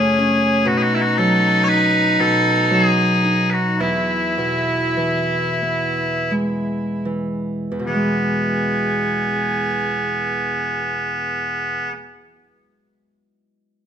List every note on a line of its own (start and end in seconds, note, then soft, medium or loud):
0.00 0.72 F#2 medium
0.00 0.72 C#3 soft
0.00 3.02 A3 soft
0.00 0.19 C#4 soft
0.00 0.67 C#4 medium
0.00 0.67 G#4 medium
0.19 3.09 C#4 medium
0.65 2.18 B2 medium
0.65 3.79 D#4 loud
0.65 0.78 F#4 medium
0.78 0.82 G#4 medium
0.82 0.94 F#4 medium
0.94 1.01 E4 medium
1.01 1.18 F#4 medium
1.18 2.70 F#3 soft
1.18 1.64 A4 medium
1.64 3.24 D#4 soft
1.64 1.68 C#5 loud
1.68 2.21 B4 loud
2.19 3.84 B2 medium
2.19 2.73 A4 medium
2.71 3.84 F#3 soft
2.71 2.84 A4 medium
2.84 3.50 G#4 medium
3.25 3.86 D#4 soft
3.50 3.81 F#4 medium
3.50 3.54 B4 medium
3.80 7.70 E2 medium
3.80 7.03 E4 medium
3.80 6.33 E4 medium
4.38 7.78 B2 soft
4.97 7.04 E3 soft
5.62 8.72 B3 soft
6.31 7.89 G#3 soft
7.05 7.86 E3 soft
7.71 11.75 E2 soft
7.79 11.83 B2 soft
7.86 11.91 E3 soft
7.86 11.90 B3 medium
7.86 11.90 G#4 medium
7.94 11.98 G#3 soft